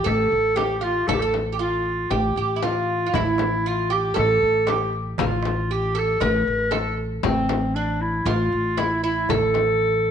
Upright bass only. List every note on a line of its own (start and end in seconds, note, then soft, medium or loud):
0.06 0.30 A1 medium
0.32 1.05 A1 medium
1.08 2.07 A1 medium
2.11 2.35 A1 medium
2.36 3.09 A1 medium
3.14 4.12 A1 medium
4.17 4.41 A1 medium
4.42 5.15 A1 medium
5.19 6.17 A1 medium
6.21 6.45 A1 loud
6.47 7.20 A1 medium
7.24 8.23 A1 medium
8.25 8.50 A1 loud
8.52 9.25 A1 medium
9.30 10.11 A1 medium